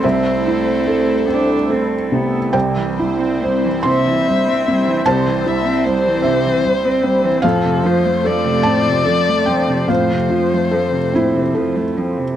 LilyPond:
<<
  \new Staff \with { instrumentName = "Violin" } { \time 6/8 \key c \major \tempo 4. = 48 c''2~ c''16 r8. | r4. e''4. | c''8 e''8 c''2 | a'8 c''8 d''2 |
c''2~ c''16 r8. | }
  \new Staff \with { instrumentName = "Felt piano" } { \time 6/8 \key c \major << { e''4. r4. | g''4. c'''4. | a''4. e''4. | f''4. a''4 g''8 |
f''4. e'4. | } \\ { <c, c'>8 e'8 a'8 c'8 a'8 c8 | c,8 e'8 c''8 c'8 c''8 c'8 | c,8 e'8 c''8 c'8 c''8 c'8 | f,8 f'8 a'8 c'8 a'8 c'8 |
f,8 f'8 a'8 c'8 a'8 c'8 | } >> }
  \new Staff \with { instrumentName = "Analog synth pad" } { \time 6/8 \key c \major <a e' a'>2. | <c' e' c''>2.~ | <c' e' c''>2. | <f a c''>2.~ |
<f a c''>2. | }
  \new Staff \with { instrumentName = "Cello" } { \clef bass \time 6/8 \key c \major c'4. d'8 c'8 b8 | c16 e16 g16 c'16 g16 e16 c16 e16 g16 c'16 g16 e16 | c16 e16 g16 c'16 g16 e16 c16 e16 g16 c'16 g16 e16 | a,16 c16 f16 a16 f16 c16 a,16 c16 f16 a16 f16 c16 |
a,16 c16 f16 a16 f16 c16 a,16 c16 f16 a16 f16 c16 | }
>>